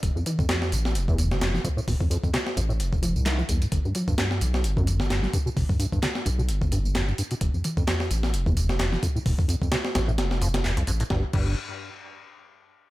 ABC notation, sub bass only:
X:1
M:4/4
L:1/16
Q:"Swing 16ths" 1/4=130
K:Flyd
V:1 name="Sub bass" clef=bass
F,,, z2 F,, z2 A,,,2 F,,,4- F,,, z3 | F,,, z2 F,, z2 A,,,2 F,,,3 C,,2 z C,, z | G,,, z2 G,, z2 B,,,2 G,,,4- G,,, z3 | G,,, z2 G,, z2 B,,,2 G,,,4- G,,, z3 |
F,,, z2 F,, z2 A,,,2 F,,,4- F,,, z3 | F,,, z2 F,, z2 A,,,2 F,,,4- F,,, C,, A,,, z | G,,, z G,,,2 z12 |]